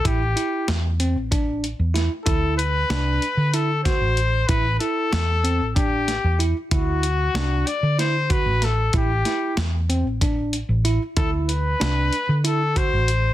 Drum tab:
HH |xxxxxxx|xxxxxxx|xxxxxxx|xxxxxxx|
SD |--o---o|--o--o-|--o--o-|--o-o-o|
BD |o---o--|o----o-|o---o--|o----o-|

HH |xxxxxxx|xxxxxxx|
SD |-oo----|--o----|
BD |o---o--|o----o-|